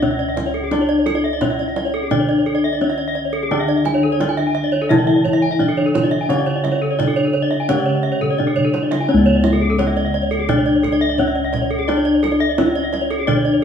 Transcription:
Already playing: C#2
0.02 C#4 D4 C#5, kendang slap, kendang low
0.11 E5
0.19 D5
0.29 E5
0.37 D5, kendang high, kendang low
0.46 C#5
0.54 A4
0.64 G#4
0.71 D4 D5, kendang high
0.81 C#5
0.89 D5
0.99 C#5
1.06 A4, kendang high
1.15 D5
1.24 E5
1.33 D5
1.41 C#4 D4 C#5, kendang slap, kendang high, kendang low
1.50 E5
1.59 D5, kendang slap
1.68 E5
1.76 D5, kendang high
1.85 C#5
1.94 A4, kendang slap
2.03 G#4
2.11 D3 D4 D5, kendang low
2.20 C#5
2.29 D5
2.38 C#5
2.46 A4
2.55 D5
2.64 E5
2.73 D5
2.81 C#4 D4 C#5, kendang slap
2.90 E5
2.98 D5
3.08 E5
3.15 D5
3.25 C#5
3.33 A4
3.43 G#4
3.51 D3 D4 D5
3.59 E5
3.68 D5
3.76 E5
3.85 G#5, kendang high
3.94 C#5
4.03 A4
4.12 C#5
4.20 D4 D5, kendang slap, kendang high
4.29 G#5
4.37 E5, kendang slap
4.47 G#5
4.55 E5
4.64 D5
4.72 C#5, kendang slap
4.82 A4
4.89 C#3 E3 E4 E5, kendang high, kendang low
4.98 D5
5.07 E5
5.16 D5
5.25 C#5, kendang low
5.33 E5
5.42 G#5
5.51 E5
5.59 D4 D5, kendang slap, kendang low
5.69 A4
5.77 C#5
5.86 A4
5.94 C#5, kendang high, kendang low
6.03 D5
6.11 E5
6.21 G#5
6.29 C#3 C#4 C#5, kendang high
6.39 D5
6.46 C#5, kendang slap
6.56 D5
6.64 E5, kendang slap, kendang high
6.72 C#5
6.82 A4
6.91 C#5
6.99 D4 D5, kendang slap, kendang high, kendang low
7.07 A4
7.16 C#5, kendang slap
7.25 A4
7.33 C#5
7.42 D5
7.51 E5, kendang slap
7.60 G#5
7.69 C#3 C#4 C#5, kendang low
7.78 D5
7.86 C#5
7.95 D5
8.03 E5
8.12 C#5
8.21 A4, kendang low
8.31 C#5
8.38 D4 D5, kendang low
8.47 A4
8.56 C#5, kendang low
8.65 A4
8.73 C#5, kendang high
8.83 D5
8.91 E5, kendang high
9.01 G#5
9.09 C#4 C#5
9.14 C#2 D5
9.26 C#5
9.35 D5
9.44 E5, kendang high
9.53 A4
9.61 G#4
9.70 A4
9.78 C#4 C#5, kendang slap, kendang high
9.87 E5
9.97 D5, kendang slap
10.05 E5
10.14 D5
10.22 C#5
10.31 A4, kendang slap
10.40 G#4
10.49 D4 D5, kendang high, kendang low
10.58 C#5
10.66 D5
10.75 C#5
10.83 A4, kendang low
10.92 D5
11.01 E5
11.09 D5
11.18 C#4 D4 C#5, kendang slap, kendang low
11.28 E5
11.35 D5
11.44 E5
11.53 D5, kendang high, kendang low
11.62 C#5
11.71 A4
11.79 G#4
11.88 D4 D5, kendang high
11.97 C#5
12.05 D5
12.14 C#5
12.23 A4, kendang high
12.32 D5
12.40 E5
12.49 D5
12.58 C#4 D4 C#5, kendang slap, kendang high, kendang low
12.66 E5
12.76 D5, kendang slap
12.83 E5
12.93 D5, kendang high
13.01 C#5
13.11 A4, kendang slap
13.19 G#4
13.27 D3 D4 D5, kendang low
13.36 C#5
13.45 D5
13.53 C#5

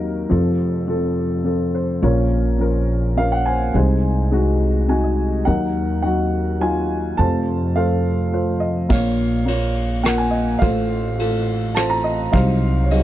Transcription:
Already playing: D#2 D#3 F#3 D#4 A#4
0.30 F1 F2 F3 C4 A4
0.88 F3 C4 A4
1.44 F3 C4 A4
1.75 C5
2.02 A#1 A#2 F3 C#4 F4 A#4 C#5
2.59 F3 C#4 A#4
3.17 F3 C#4 A#4 F5
3.32 F#5
3.46 C5 G#5
3.74 C2 C3 G#3 D#4 C5
4.32 G#3 D#4 F#4
4.88 G#3 D#4 F#4 G#5
5.04 D#5
5.45 D#2 D#3 F#3 D#4 A#4 F#5
6.02 F#3 D#4 F#4 F#5
6.60 F#3 D#4 F4 G#5
7.17 F1 F2 A3 F4 C5 A5
7.75 A3 F4 A4 C5 F5
8.32 A3 F4 C5
8.60 D#5
8.89 A#1 A#2 A#3 F4 C#5 F5, kick, ride
9.46 A#3 F4 C#5, ride
10.03 A#3 F4 A#4 F#5, cross-stick, ride
10.18 G#5
10.31 D#5
10.59 A1 A2 A3 F4 A4 C5 F5, kick, ride
11.18 A3 F4 A4, ride
11.75 A3 F4 C5 A5, cross-stick, ride
11.90 A#5
12.04 D#5
12.32 C2 C3 F#3 D#4 C5 F5, kick, ride
12.84 C#5
12.90 F#3 D#4 F#4 G#4 D#5, ride

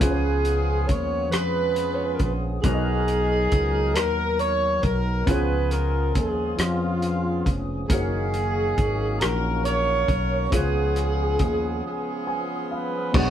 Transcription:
Already playing: G#3
0.00 C#2 C#3 F3 B3 C#4 F4 G#4 B4, kick, closed hi-hat
0.10 C#5
0.45 closed hi-hat
0.87 D#2 C#5, kick, closed hi-hat
1.31 F2 G#4 B4, cross-stick, closed hi-hat
1.35 F4
1.76 closed hi-hat
1.95 C#5
2.04 B4
2.15 A#4
2.19 A#1 B4, kick, closed hi-hat
2.62 B1 B2 F#3 B3 D#4 F#4 G#4 A#4, kick, closed hi-hat
2.66 D#4 A#4 C#5
2.74 D#5
3.08 closed hi-hat
3.52 C#2, kick, closed hi-hat
3.94 D#2 A#4, cross-stick, closed hi-hat
4.39 C#5, closed hi-hat
4.82 B1 A#4, kick, closed hi-hat
5.26 C#2 C#3 E3 F3 G#3 B3 C#4 F4 G#4 B4, kick, closed hi-hat
5.30 F3 F4 G#4 C#5
5.71 A#4, cross-stick, closed hi-hat
6.14 D#2 G#4, kick, closed hi-hat
6.57 F2 F4, cross-stick, closed hi-hat
6.62 G#3 B3
7.02 closed hi-hat
7.46 F1, kick, closed hi-hat
7.88 F#1 D#3 F#3 A#3 C#4 D#4 F#4 G#4, kick, closed hi-hat
7.92 D#3 F#4 C#5
8.34 closed hi-hat
8.78 G#1, kick, closed hi-hat
9.19 A#1 A#4, cross-stick, closed hi-hat
9.64 A#4 C#5, closed hi-hat
10.08 B1, kick, closed hi-hat
10.50 C#2 C#3 F3 G#3 B3 C#4 F4 G#4, kick, closed hi-hat
10.54 F3 B3 C#4 F4 G#4 C#5
10.96 cross-stick, closed hi-hat
11.39 D#2, kick, closed hi-hat
11.86 B3 F4 G#4
12.27 G#5
12.71 B4 F5
13.12 B1 B2 F#3 B3 D4 F#4 G#4 C#5, kick, crash
13.18 F#5

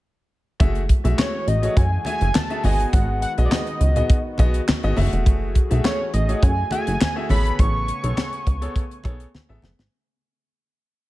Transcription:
0.60 F#1 E3 G#3 A3 F#4 G#4 E5, kick, closed hi-hat, muted conga
0.75 closed hi-hat
0.89 kick, closed hi-hat
1.04 B1 A3 F#4 G#4 E5, closed hi-hat
1.18 C#5, snare, clap, closed hi-hat, high conga
1.47 A1 D#5, closed hi-hat
1.62 A3 F#4 G#4 C#5, closed hi-hat
1.77 F#2 G#5, kick, closed hi-hat, muted conga
2.05 A3 F#4 G#4 E5 G#5, closed hi-hat, muted conga
2.21 F#1, closed hi-hat
2.35 A5, snare, clap, closed hi-hat, high conga
2.50 A3 F#4 G#4 E5, closed hi-hat
2.64 G#1 D#3 B3 F#4 G#4 D#5 G#5, open hi-hat, high conga
2.80 closed hi-hat
2.93 G#1 F#5, kick, closed hi-hat, muted conga
3.22 F#5, closed hi-hat
3.37 B1 B3 F#4 G#4 D#5, closed hi-hat
3.45 D5
3.51 D#5, snare, clap, closed hi-hat, high conga
3.67 closed hi-hat
3.80 C#2, closed hi-hat
3.96 B3 F#4 G#4 D#5, closed hi-hat, low conga
4.10 kick, closed hi-hat
4.38 B1 B3 F#4 G#4 D#5, kick, closed hi-hat, muted conga
4.54 closed hi-hat
4.68 snare, clap, closed hi-hat, high conga
4.83 G#1 B3 F#4 G#4 D#5, closed hi-hat
4.96 F#1 E3 A3 F#4 G#4 E5, open hi-hat, high conga
5.13 E1, closed hi-hat
5.26 F#1, kick, closed hi-hat, muted conga
5.55 kick, closed hi-hat
5.70 B1 A3 F#4 G#4 E5, closed hi-hat
5.84 C#5, snare, clap, closed hi-hat, high conga
6.14 A1 D#5, closed hi-hat
6.28 A3 F#4 G#4 C#5, closed hi-hat
6.43 F#2 G#5, kick, closed hi-hat
6.71 A3 F#4 G#4 E5 G#5, closed hi-hat, muted conga
6.87 F#1, closed hi-hat
7.01 snare, clap, closed hi-hat, high conga
7.16 A3 F#4 G#4 E5
7.29 A1 C#3 B3 G#4 A4 C#5 G#5 B5, open hi-hat, high conga
7.46 closed hi-hat
7.59 A1 C#6, kick, closed hi-hat, muted conga
7.88 closed hi-hat
8.03 B1 B3 G#4 A4 C#5, closed hi-hat
8.17 snare, clap, closed hi-hat, high conga
8.33 closed hi-hat
8.47 C#2, kick, closed hi-hat
8.61 B3 G#4 A4 C#5, closed hi-hat
8.76 kick, closed hi-hat
8.91 closed hi-hat
9.04 B1 B3 G#4 A4 C#5, kick, closed hi-hat, muted conga
9.20 closed hi-hat
9.35 snare, high conga
9.49 A1 B3 G#4 A4 E5
9.62 F#1, snare, high conga
9.79 G#1, snare

